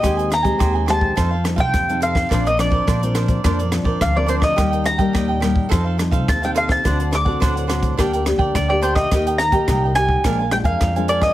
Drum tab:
HH |xxxxx-x-x-xxxxx-|xxx-xxxxxxx-x-x-|xxxxx-x-x-xxxxx-|xxx-xxxxxxx-x-x-|
SD |r-r-r-r-r-r-r--r|r-r-r-r-r-r-r--r|r-r-r-r-r-r-r--r|r-r-r-r-r-r-r--r|
BD |o--oo--oo--oo--o|o--oo--oo--oo--o|o--oo--oo--oo--o|o--oo--oo--oo--o|

HH |xxxxx-x-x-xxxxx-|
SD |r-r-r-r-r-r-r--r|
BD |o--oo--oo--oo--o|